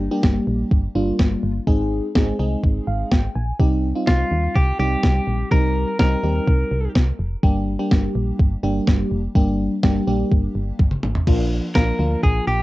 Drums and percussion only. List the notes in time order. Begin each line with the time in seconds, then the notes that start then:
0.23 kick, snare
0.71 kick
1.19 kick, snare
1.67 kick
2.15 kick, snare
2.63 kick
3.11 kick, snare
3.59 kick
4.07 kick, snare
4.55 kick
5.03 kick, snare
5.51 kick
5.99 kick, snare
6.47 kick
6.95 kick, snare
7.43 kick
7.91 kick, snare
8.40 kick
8.87 kick, snare
9.35 kick
9.83 kick, snare
10.31 kick
10.79 kick, high tom
10.91 mid tom
11.03 mid tom
11.15 floor tom
11.27 kick, crash
11.75 kick, snare
12.23 kick